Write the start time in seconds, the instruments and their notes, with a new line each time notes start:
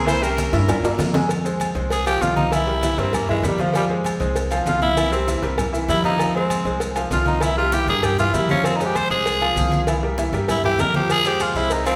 Already playing: upright bass C2
0.06 grand piano E3 E4 E5, horn section E4 C5, cowbell, high conga, low agogo, long guiro, maracas
0.22 grand piano G3 G4 G5, horn section C#4 A#4, high conga, maracas
0.37 cowbell, high conga, low agogo, short guiro, maracas
0.53 upright bass G2, grand piano E4 E5 E6, cowbell, high bongo, high conga, low agogo, short guiro, maracas
0.69 cowbell, high bongo, high conga, low conga, high timbale, low agogo, long guiro, maracas
0.83 upright bass G2, grand piano A#3 A#4 A#5, high conga, high timbale, maracas
0.98 upright bass F2, cowbell, low bongo, high conga, low timbale, low agogo, short guiro, maracas
1.13 grand piano G#3 G#4 G#5, cowbell, low bongo, high conga, low timbale, short guiro, maracas
1.29 cowbell, high conga, low agogo, maracas
1.44 grand piano G#3 G#4 C5, high conga, low agogo, maracas
1.60 cowbell, high conga, low agogo, maracas
1.75 upright bass C2, grand piano G#3 G#4 C5, cowbell, high conga, maracas
1.90 tenor saxophone G#4, cowbell, high conga, low agogo, maracas
2.06 grand piano F3 F4 F5, tenor saxophone G4, cowbell, high conga, low agogo, maracas
2.21 upright bass C2, grand piano F3 F4 F5, tenor saxophone F4, cowbell, high conga, low timbale, maracas
2.36 tenor saxophone D#4, cowbell, high conga, maracas
2.52 grand piano E3 E4 E5, tenor saxophone E4, cowbell, high conga, low agogo, maracas
2.67 grand piano G3 G4 A#4, high conga
2.82 grand piano E3 E4 E5, cowbell, high conga, low agogo, maracas
2.98 upright bass G2, grand piano G3 G4 A#4, tenor saxophone C4, cowbell, high conga, low agogo, maracas
3.13 tenor saxophone A#3, cowbell, high conga, low conga, low agogo, maracas
3.29 grand piano E3 E4 E5, tenor saxophone G#3, high conga, low conga
3.43 upright bass F2, grand piano G3 G4 A#4, tenor saxophone G3, cowbell, high conga, low timbale, low agogo, maracas
3.58 grand piano F3 F4 F5, tenor saxophone F3, cowbell, high conga, maracas
3.74 tenor saxophone G3, cowbell, high conga, low agogo, maracas
3.89 grand piano G#3 G#4 C5, high conga, low agogo
4.04 cowbell, high conga, low agogo, maracas
4.20 upright bass C2, grand piano G#3 G#4 C5, cowbell, high conga, maracas
4.36 cowbell, high conga, low agogo, maracas
4.51 grand piano F3 F4 F5, cowbell, high conga, low agogo, maracas
4.66 upright bass C2, grand piano F3 F4 F5, tenor saxophone F4, cowbell, high conga, low timbale, maracas
4.82 tenor saxophone E4, cowbell, high conga, maracas
4.97 grand piano E3 E4 E5, cowbell, high conga, low agogo, maracas
5.12 grand piano G3 G4 A#4, tenor saxophone C4, high conga, maracas
5.27 grand piano E3 E4 E5, cowbell, high conga, low agogo, maracas
5.42 upright bass C2, grand piano G3 G4 A#4, cowbell, high conga, low agogo, maracas
5.58 cowbell, high conga, low conga, low agogo, maracas
5.72 grand piano E3 E4 E5, high conga, maracas
5.88 upright bass F2, grand piano G3 G4 A#4, tenor saxophone E4, cowbell, high conga, low agogo, maracas
6.04 grand piano F3 F4 F5, tenor saxophone D#4, cowbell, high conga, maracas
6.19 cowbell, high conga, low agogo, maracas
6.35 grand piano G#3 G#4 C5, tenor saxophone C4, high conga, low agogo
6.50 cowbell, high conga, low agogo, maracas
6.65 upright bass C2, grand piano G#3 G#4 C5, cowbell, high conga, maracas
6.80 cowbell, high conga, low agogo, maracas
6.96 grand piano F3 F4 F5, cowbell, high conga, low agogo, maracas
7.11 upright bass C2, grand piano F3 F4 F5, tenor saxophone F4, cowbell, high conga, low timbale, maracas
7.26 tenor saxophone D#4, cowbell, high conga, maracas
7.41 grand piano E3 E4 E5, tenor saxophone E4, cowbell, high conga, low agogo, maracas
7.57 grand piano G3 G4 A#4, tenor saxophone F4, high conga
7.72 grand piano E3 E4 E5, tenor saxophone G4, cowbell, high conga, low agogo, maracas
7.87 upright bass G2, grand piano G3 G4 A#4, tenor saxophone G#4, cowbell, high conga, low agogo, maracas
8.03 tenor saxophone G4, cowbell, high conga, low conga, low agogo, maracas
8.18 grand piano E3 E4 E5, tenor saxophone F4, high conga, low conga, maracas
8.34 upright bass F2, grand piano G3 G4 A#4, tenor saxophone E4, cowbell, high conga, low agogo, maracas
8.49 grand piano F3 F4 F5, tenor saxophone C#4, cowbell, high conga, maracas
8.64 tenor saxophone C4, cowbell, high conga, low agogo, maracas
8.76 tenor saxophone D#4, low agogo
8.80 grand piano G#3 G#4 C5, high conga, maracas
8.86 tenor saxophone G4
8.95 tenor saxophone C5, cowbell, high conga, low agogo, maracas
9.10 upright bass C2, grand piano G#3 G#4 C5, tenor saxophone G#4, cowbell, high conga, maracas
9.26 cowbell, high conga, low agogo, maracas
9.41 grand piano F3 F4 F5, cowbell, high conga, low agogo
9.55 upright bass C2, grand piano F3 F4 F5, cowbell, high conga, maracas
9.72 cowbell, high conga, maracas
9.87 grand piano E3 E4 E5, cowbell, high conga, low agogo, maracas
10.03 grand piano G3 G4 A#4, high conga
10.18 grand piano E3 E4 E5, cowbell, high conga, low agogo, maracas
10.32 upright bass G2, grand piano G3 G4 A#4, cowbell, high conga, low agogo, maracas
10.48 tenor saxophone E4, cowbell, high conga, low conga, low agogo, maracas
10.64 grand piano E3 E4 E5, tenor saxophone G4, high conga, low conga
10.78 upright bass F2, grand piano G3 G4 A#4, tenor saxophone A#4, cowbell, high conga, low timbale, low agogo, maracas
10.94 grand piano F3 F4 F5, tenor saxophone G4, cowbell, high conga, maracas
11.10 tenor saxophone G#4, cowbell, high conga, low agogo, long guiro, maracas
11.25 grand piano G#3 G#4 C5, tenor saxophone G4, high conga, low agogo, maracas
11.40 tenor saxophone F4, cowbell, high conga, low agogo, short guiro, maracas
11.55 upright bass C2, grand piano G#3 G#4 C5, tenor saxophone E4, cowbell, high conga, short guiro, maracas
11.70 tenor saxophone D#4, cowbell, high conga, low agogo, long guiro, maracas
11.86 grand piano F3 F4 F5, tenor saxophone C4, cowbell, high conga, low agogo, maracas